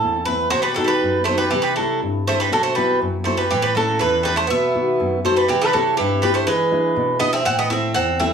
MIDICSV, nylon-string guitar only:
0, 0, Header, 1, 2, 480
1, 0, Start_track
1, 0, Tempo, 495050
1, 505, Time_signature, 2, 2, 24, 8
1, 8080, End_track
2, 0, Start_track
2, 0, Title_t, "Nylon-string guitar"
2, 0, Program_c, 0, 24
2, 0, Note_on_c, 0, 57, 51
2, 0, Note_on_c, 0, 60, 45
2, 0, Note_on_c, 0, 64, 52
2, 28, Note_on_c, 0, 40, 62
2, 162, Note_off_c, 0, 57, 0
2, 165, Note_off_c, 0, 60, 0
2, 169, Note_off_c, 0, 64, 0
2, 260, Note_on_c, 0, 57, 49
2, 267, Note_on_c, 0, 60, 45
2, 271, Note_on_c, 0, 64, 55
2, 456, Note_off_c, 0, 57, 0
2, 458, Note_off_c, 0, 64, 0
2, 459, Note_off_c, 0, 60, 0
2, 494, Note_off_c, 0, 40, 0
2, 511, Note_on_c, 0, 47, 67
2, 747, Note_on_c, 0, 66, 50
2, 751, Note_on_c, 0, 59, 44
2, 757, Note_on_c, 0, 63, 54
2, 977, Note_off_c, 0, 47, 0
2, 993, Note_on_c, 0, 42, 61
2, 1133, Note_off_c, 0, 66, 0
2, 1136, Note_off_c, 0, 59, 0
2, 1138, Note_off_c, 0, 63, 0
2, 1238, Note_on_c, 0, 54, 47
2, 1243, Note_on_c, 0, 59, 42
2, 1249, Note_on_c, 0, 63, 52
2, 1428, Note_off_c, 0, 54, 0
2, 1431, Note_off_c, 0, 59, 0
2, 1433, Note_off_c, 0, 63, 0
2, 1459, Note_off_c, 0, 42, 0
2, 1479, Note_on_c, 0, 48, 68
2, 1727, Note_on_c, 0, 55, 50
2, 1728, Note_on_c, 0, 60, 42
2, 1733, Note_on_c, 0, 64, 54
2, 1943, Note_off_c, 0, 48, 0
2, 1965, Note_on_c, 0, 43, 61
2, 2107, Note_off_c, 0, 55, 0
2, 2107, Note_off_c, 0, 60, 0
2, 2111, Note_off_c, 0, 64, 0
2, 2202, Note_on_c, 0, 55, 46
2, 2206, Note_on_c, 0, 60, 45
2, 2212, Note_on_c, 0, 64, 52
2, 2392, Note_off_c, 0, 55, 0
2, 2395, Note_off_c, 0, 60, 0
2, 2395, Note_off_c, 0, 64, 0
2, 2427, Note_off_c, 0, 43, 0
2, 2441, Note_on_c, 0, 47, 69
2, 2686, Note_on_c, 0, 54, 52
2, 2691, Note_on_c, 0, 59, 43
2, 2692, Note_on_c, 0, 64, 55
2, 2905, Note_off_c, 0, 47, 0
2, 2925, Note_on_c, 0, 42, 68
2, 3068, Note_off_c, 0, 54, 0
2, 3069, Note_off_c, 0, 59, 0
2, 3071, Note_off_c, 0, 64, 0
2, 3160, Note_on_c, 0, 54, 49
2, 3165, Note_on_c, 0, 59, 44
2, 3169, Note_on_c, 0, 64, 52
2, 3351, Note_off_c, 0, 54, 0
2, 3354, Note_off_c, 0, 59, 0
2, 3357, Note_off_c, 0, 64, 0
2, 3388, Note_off_c, 0, 42, 0
2, 3410, Note_on_c, 0, 45, 67
2, 3650, Note_on_c, 0, 57, 46
2, 3656, Note_on_c, 0, 61, 45
2, 3661, Note_on_c, 0, 64, 51
2, 3871, Note_off_c, 0, 45, 0
2, 3885, Note_on_c, 0, 40, 65
2, 4030, Note_off_c, 0, 57, 0
2, 4033, Note_off_c, 0, 61, 0
2, 4036, Note_off_c, 0, 64, 0
2, 4126, Note_on_c, 0, 57, 51
2, 4131, Note_on_c, 0, 61, 43
2, 4138, Note_on_c, 0, 64, 59
2, 4315, Note_off_c, 0, 57, 0
2, 4319, Note_off_c, 0, 61, 0
2, 4321, Note_off_c, 0, 64, 0
2, 4348, Note_off_c, 0, 40, 0
2, 4370, Note_on_c, 0, 47, 69
2, 4602, Note_on_c, 0, 59, 49
2, 4607, Note_on_c, 0, 51, 44
2, 4613, Note_on_c, 0, 66, 55
2, 4830, Note_off_c, 0, 47, 0
2, 4847, Note_on_c, 0, 42, 65
2, 4985, Note_off_c, 0, 59, 0
2, 4988, Note_off_c, 0, 51, 0
2, 4989, Note_off_c, 0, 66, 0
2, 5084, Note_on_c, 0, 59, 51
2, 5089, Note_on_c, 0, 63, 44
2, 5089, Note_on_c, 0, 66, 55
2, 5274, Note_off_c, 0, 59, 0
2, 5276, Note_off_c, 0, 63, 0
2, 5277, Note_off_c, 0, 66, 0
2, 5308, Note_off_c, 0, 42, 0
2, 5333, Note_on_c, 0, 48, 69
2, 5566, Note_on_c, 0, 60, 48
2, 5574, Note_on_c, 0, 64, 46
2, 5576, Note_on_c, 0, 67, 53
2, 5790, Note_off_c, 0, 48, 0
2, 5813, Note_on_c, 0, 43, 65
2, 5947, Note_off_c, 0, 60, 0
2, 5949, Note_off_c, 0, 64, 0
2, 5951, Note_off_c, 0, 67, 0
2, 6041, Note_on_c, 0, 60, 49
2, 6049, Note_on_c, 0, 64, 44
2, 6053, Note_on_c, 0, 67, 54
2, 6231, Note_off_c, 0, 60, 0
2, 6236, Note_off_c, 0, 64, 0
2, 6236, Note_off_c, 0, 67, 0
2, 6269, Note_off_c, 0, 43, 0
2, 6280, Note_on_c, 0, 52, 69
2, 6510, Note_on_c, 0, 62, 46
2, 6515, Note_on_c, 0, 64, 46
2, 6520, Note_on_c, 0, 68, 57
2, 6741, Note_off_c, 0, 52, 0
2, 6751, Note_on_c, 0, 47, 65
2, 6893, Note_off_c, 0, 62, 0
2, 6897, Note_off_c, 0, 64, 0
2, 6899, Note_off_c, 0, 68, 0
2, 6986, Note_on_c, 0, 62, 51
2, 6994, Note_on_c, 0, 64, 46
2, 6994, Note_on_c, 0, 68, 56
2, 7179, Note_off_c, 0, 62, 0
2, 7183, Note_off_c, 0, 68, 0
2, 7184, Note_off_c, 0, 64, 0
2, 7215, Note_off_c, 0, 47, 0
2, 7233, Note_on_c, 0, 45, 70
2, 7469, Note_on_c, 0, 60, 50
2, 7472, Note_on_c, 0, 64, 48
2, 7474, Note_on_c, 0, 69, 55
2, 7693, Note_off_c, 0, 45, 0
2, 7716, Note_on_c, 0, 40, 65
2, 7850, Note_off_c, 0, 60, 0
2, 7850, Note_off_c, 0, 64, 0
2, 7853, Note_off_c, 0, 69, 0
2, 7951, Note_on_c, 0, 60, 54
2, 7956, Note_on_c, 0, 64, 45
2, 7961, Note_on_c, 0, 69, 57
2, 8080, Note_off_c, 0, 40, 0
2, 8080, Note_off_c, 0, 60, 0
2, 8080, Note_off_c, 0, 64, 0
2, 8080, Note_off_c, 0, 69, 0
2, 8080, End_track
0, 0, End_of_file